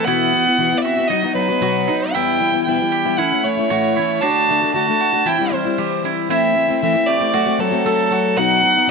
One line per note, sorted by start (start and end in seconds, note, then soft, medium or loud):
0.05 0.33 B2 medium
0.05 0.31 E3 medium
0.05 0.79 B3 medium
0.05 0.32 B3 medium
0.05 0.58 E4 medium
0.05 0.33 E4 medium
0.05 0.34 F#4 medium
0.05 0.79 F#5 loud
0.33 0.46 B3 medium
0.33 0.46 E4 medium
0.33 0.45 F#4 medium
0.46 0.58 B3 soft
0.46 0.59 E4 soft
0.46 0.59 F#4 medium
0.58 0.72 B2 medium
0.58 0.72 E3 medium
0.58 0.72 B3 medium
0.58 0.71 E4 medium
0.58 0.70 F#4 medium
0.71 0.99 B3 soft
0.71 0.97 E4 soft
0.71 0.96 F#4 soft
0.78 0.85 B3 medium
0.78 0.83 D5 medium
0.82 1.10 C4 medium
0.82 1.10 F#4 medium
0.82 1.09 E5 medium
0.97 1.10 B3 soft
0.97 1.11 E4 soft
0.97 1.10 F#4 medium
1.08 1.23 F#3 medium
1.08 1.33 B3 medium
1.08 1.24 B3 medium
1.08 1.61 D#4 medium
1.08 1.23 D#4 medium
1.08 1.34 D#5 medium
1.13 1.22 F#4 medium
1.23 1.35 B3 soft
1.23 1.36 D#4 medium
1.23 1.36 F#4 soft
1.34 2.15 F#3 medium
1.34 1.49 F#3 medium
1.34 1.50 B3 medium
1.34 1.49 D#4 medium
1.34 2.14 B4 medium
1.39 1.47 F#4 medium
1.49 1.61 B3 soft
1.49 1.62 D#4 soft
1.49 1.62 F#4 medium
1.61 1.88 B2 medium
1.61 1.87 F#3 medium
1.61 1.88 B3 medium
1.61 1.89 D#4 medium
1.61 1.87 F#4 medium
1.61 1.89 F#4 medium
1.88 2.15 F#3 medium
1.88 2.15 B3 medium
1.88 2.14 D#4 medium
1.88 2.15 D#4 medium
1.88 2.16 F#4 medium
2.12 2.41 E2 medium
2.12 2.41 B2 medium
2.12 2.38 E3 medium
2.12 2.40 G3 medium
2.12 2.40 B3 medium
2.12 2.51 E4 medium
2.12 2.66 E4 medium
2.12 2.63 G5 loud
2.17 2.41 E4 medium
2.40 2.53 E3 medium
2.40 2.54 G3 medium
2.40 2.53 B3 medium
2.40 2.51 E4 medium
2.52 2.66 E3 soft
2.52 2.67 G3 soft
2.52 2.67 B3 soft
2.52 2.66 E4 soft
2.64 2.80 E2 medium
2.64 2.80 B2 medium
2.64 2.80 E3 medium
2.64 3.20 E4 medium
2.64 3.19 G5 medium
2.68 2.80 G3 medium
2.68 2.80 B3 medium
2.68 2.78 E4 medium
2.80 3.07 E3 soft
2.80 3.06 G3 soft
2.80 3.05 B3 soft
2.80 3.04 E4 soft
2.92 3.18 G4 medium
3.05 3.17 E3 soft
3.05 3.19 G3 soft
3.05 3.19 B3 soft
3.05 3.19 E4 medium
3.17 3.31 E3 medium
3.17 3.32 A3 medium
3.17 3.45 C#4 medium
3.17 3.32 C#4 medium
3.17 3.69 E4 medium
3.17 3.45 F#5 medium
3.21 3.31 E4 medium
3.32 3.44 A3 soft
3.32 3.45 C#4 soft
3.32 3.45 E4 medium
3.43 3.57 E3 medium
3.43 4.23 A3 medium
3.43 3.58 A3 medium
3.43 3.58 C#4 medium
3.43 4.23 C#5 medium
3.47 3.56 E4 medium
3.57 3.70 A3 soft
3.57 3.71 C#4 soft
3.57 3.70 E4 soft
3.70 3.96 A2 medium
3.70 3.95 E3 medium
3.70 3.97 A3 medium
3.70 3.97 C#4 medium
3.70 3.97 E4 medium
3.70 3.96 F#4 medium
3.96 4.22 E3 medium
3.96 4.22 A3 medium
3.96 4.23 C#4 medium
3.96 4.22 E4 medium
3.96 4.23 E4 medium
4.21 4.47 D3 medium
4.21 4.48 A3 medium
4.21 4.73 D4 medium
4.21 4.49 D4 medium
4.21 4.73 F#4 medium
4.21 4.49 F#4 medium
4.21 4.74 A5 medium
4.49 4.61 D3 medium
4.49 4.62 A3 medium
4.49 4.62 D4 medium
4.49 4.60 F#4 medium
4.61 4.73 A3 soft
4.61 4.74 D4 soft
4.61 4.74 F#4 medium
4.73 4.87 D3 medium
4.73 4.87 A3 medium
4.73 4.88 D4 medium
4.73 5.28 F#4 medium
4.73 4.86 F#4 medium
4.73 5.28 A5 loud
4.87 5.15 A3 soft
4.87 5.13 D4 soft
4.87 5.12 F#4 soft
5.00 5.25 F#4 medium
5.13 5.27 A3 soft
5.13 5.27 D4 soft
5.13 5.26 F#4 medium
5.26 5.39 E3 medium
5.26 5.40 G3 medium
5.26 5.39 C4 medium
5.26 5.77 E4 medium
5.26 5.55 E4 medium
5.26 5.37 E4 medium
5.26 5.54 G5 medium
5.38 5.51 G3 soft
5.38 5.52 C4 medium
5.38 5.52 E4 medium
5.51 5.65 E3 medium
5.51 5.65 G3 medium
5.51 6.05 G3 medium
5.51 5.66 C4 medium
5.51 5.64 E4 medium
5.51 6.04 C5 medium
5.65 5.78 G3 soft
5.65 5.78 C4 medium
5.65 5.78 E4 medium
5.78 6.04 C3 medium
5.78 6.01 E3 medium
5.78 6.03 G3 medium
5.78 6.03 C4 medium
5.78 6.04 E4 medium
5.78 6.03 G4 medium
6.03 6.28 E3 medium
6.03 6.30 G3 medium
6.03 6.29 C4 medium
6.03 6.29 E4 medium
6.03 6.30 E4 medium
6.29 6.55 A2 medium
6.29 6.54 E3 medium
6.29 6.55 A3 medium
6.29 6.56 C4 medium
6.29 6.78 C4 medium
6.29 6.81 E4 loud
6.29 6.56 E4 medium
6.29 6.78 E5 loud
6.55 6.68 E3 medium
6.55 6.69 A3 medium
6.55 6.69 C4 medium
6.55 6.67 E4 medium
6.68 6.82 A3 soft
6.68 6.82 C4 medium
6.68 6.81 E4 medium
6.81 6.95 A2 medium
6.81 6.95 E3 medium
6.81 6.96 A3 medium
6.81 7.10 C4 medium
6.81 6.95 C4 medium
6.81 6.93 E4 medium
6.81 7.08 E5 medium
6.94 7.21 A3 soft
6.94 7.20 C4 soft
6.94 7.19 E4 medium
7.06 7.62 A3 medium
7.06 7.33 G4 medium
7.06 7.62 D5 loud
7.20 7.33 A3 soft
7.20 7.34 C4 soft
7.20 7.33 E4 medium
7.33 7.46 F#3 medium
7.33 7.47 A3 medium
7.33 7.46 C4 medium
7.33 7.84 F#4 medium
7.33 7.45 F#4 medium
7.46 7.59 A3 soft
7.46 7.60 C4 medium
7.46 7.59 F#4 medium
7.59 7.72 F#3 medium
7.59 8.41 F#3 medium
7.59 7.73 A3 medium
7.59 7.71 C4 medium
7.59 7.70 F#4 medium
7.59 8.39 A4 loud
7.71 7.85 A3 soft
7.71 7.85 C4 medium
7.71 7.85 F#4 medium
7.85 8.10 F#3 medium
7.85 8.11 A3 medium
7.85 8.12 C4 medium
7.85 8.12 F#4 medium
7.85 8.11 A4 medium
8.11 8.36 F#3 medium
8.11 8.38 A3 medium
8.11 8.38 C4 medium
8.11 8.37 F#4 medium
8.11 8.38 F#4 medium
8.37 8.63 B2 medium
8.37 8.61 F#3 medium
8.37 8.62 B3 medium
8.37 8.88 D#4 medium
8.37 8.63 D#4 medium
8.37 8.91 D#4 medium
8.37 8.64 F#4 medium
8.37 8.91 F#5 loud
8.62 8.76 F#3 medium
8.62 8.76 B3 medium
8.62 8.75 D#4 medium
8.62 8.74 F#4 medium
8.75 8.88 B3 soft
8.75 8.88 D#4 soft
8.75 8.88 F#4 soft
8.88 8.91 B2 medium